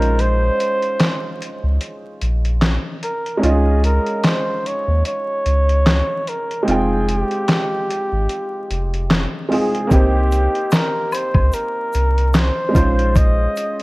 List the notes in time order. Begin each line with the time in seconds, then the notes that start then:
Already playing: A#1 G#3 C#4 D#4 F4 A#4 C5
0.02 closed hi-hat
0.19 C5, closed hi-hat
0.60 closed hi-hat
0.82 closed hi-hat
0.99 snare, clap, closed hi-hat
1.42 closed hi-hat
1.64 C#2
1.81 closed hi-hat
2.21 A#1, closed hi-hat
2.45 closed hi-hat
2.62 snare, clap, closed hi-hat
3.03 A#4, closed hi-hat
3.26 closed hi-hat
3.37 G#3 C#4
3.41 C#2 D#4 F4 G#4, closed hi-hat
3.46 D#5
3.84 A#4, closed hi-hat
4.06 closed hi-hat
4.24 C5, snare, clap, closed hi-hat
4.66 C#5, closed hi-hat
4.88 D#2
5.05 C#5, closed hi-hat
5.46 C#2, closed hi-hat
5.69 closed hi-hat
5.86 snare, clap, closed hi-hat
6.27 A#4, closed hi-hat
6.51 closed hi-hat
6.63 G#3 C4 G4
6.67 F1 D#4 F4 G#4, closed hi-hat
6.71 G5
7.08 G#4, closed hi-hat
7.19 G4
7.31 closed hi-hat
7.48 snare, clap, closed hi-hat
7.90 closed hi-hat
8.12 G#1
8.29 closed hi-hat
8.71 F1, closed hi-hat
8.94 closed hi-hat
9.11 snare, clap, closed hi-hat
9.48 G#3 C4 D#4 F4 G#4, open hi-hat
9.53 G#4
9.75 closed hi-hat
9.87 A#3 C4 D#4, shaker
9.91 C2 G4, kick, closed hi-hat
9.95 C5
10.32 closed hi-hat, shaker
10.55 closed hi-hat
10.71 A#4, snare, clap, closed hi-hat, shaker
11.12 C5, closed hi-hat, high woodblock, shaker
11.34 C#2, kick, high woodblock
11.52 A#4, closed hi-hat, shaker
11.93 C2, closed hi-hat, shaker
12.18 closed hi-hat
12.34 C5, snare, clap, closed hi-hat, shaker
12.69 G#3 C#4
12.73 A#1 D#4 F4, kick, closed hi-hat, shaker
12.77 C5
12.99 closed hi-hat
13.15 D#5, kick, closed hi-hat, shaker
13.56 closed hi-hat, shaker
13.80 closed hi-hat